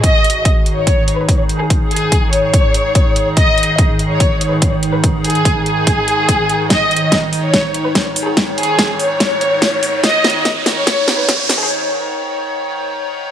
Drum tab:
HH |x---xx--x---x---x---x---x---x---|x---xx--x---x---x---x---x---x---|x---xx--x---x---x---x---x---x---|x---xxx-x---x---x---x---x---x---|
SD |--------------------------------|--------------------------------|--------------------------------|--------------------------------|
BD |o-------o-------o-------o-------|o-------o-------o-------o-------|o-------o-------o-------o-------|o-------o-------o-------o-------|

HH |x---xx--x---o---x---x---x---o---|x---xx--x---o---x---x---x---o---|x---xx--x---o---x---x---x---o---|--------------------------------|
SD |o-------o-------o-------o-------|o-------o-------o-------o-------|o---o---o---o---o---o---o---o---|--------------------------------|
BD |o-------o-------o-------o-------|o-------o-------o-------o-------|o-------o-------o-------o-------|--------------------------------|